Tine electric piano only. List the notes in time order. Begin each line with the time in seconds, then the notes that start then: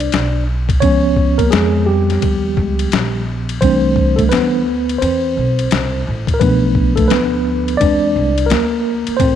Already playing: D4 D5
0.81 F3 B3 C#4 C#5
1.38 A#3 A#4
1.51 G#3 G#4
1.86 G3 G4
3.61 E3 G3 A3 C4 D4 C5
4.16 A3 A4
4.29 B3 B4
4.98 C4 C5
6.34 A#4
6.40 F3 A3 B3 D4 B4
6.96 A3 A4
7.08 B3 B4
7.77 G#3 C4 D4 D5
8.46 A#4
8.51 A#3
9.17 C4 C5